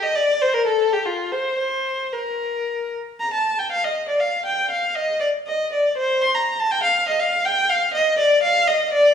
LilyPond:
\new Staff \with { instrumentName = "Violin" } { \time 3/4 \key bes \major \tempo 4 = 120 ees''16 d''8 c''16 bes'16 a'8 g'16 f'8 c''8 | c''4 bes'4. r8 | bes''16 a''8 g''16 f''16 ees''8 d''16 f''8 g''8 | f''8 ees''8 d''8 ees''8 d''8 c''8 |
c'''16 bes''8 a''16 g''16 f''8 ees''16 f''8 g''8 | f''8 ees''8 d''8 f''8 ees''8 d''8 | }